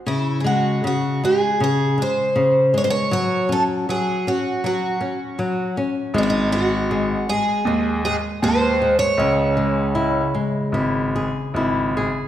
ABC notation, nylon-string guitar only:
X:1
M:4/4
L:1/8
Q:1/4=79
K:C#m
V:1 name="Nylon-string guitar" clef=bass
C, G, C, G, C, G, C, G, | F, C F, C F, C F, C | G, G, G, G, G, G, G, G, | C, G, E G, E G E G |]